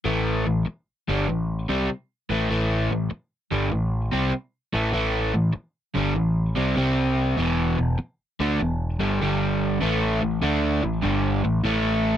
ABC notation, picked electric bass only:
X:1
M:4/4
L:1/8
Q:"Swing" 1/4=98
K:Edor
V:1 name="Picked electric bass" clef=bass
A,,, A,,, z G,,, A,,, =C,, z A,,, | A,,, A,,, z G,,, A,,, =C,, z A,,, | A,,, A,,, z G,,, A,,, =C,, C,,2 | E,,, E,,, z D,, E,,, G,,, G,,,2 |
A,,, A,,, D,, A,,, G,,, A,,, A,,,2 |]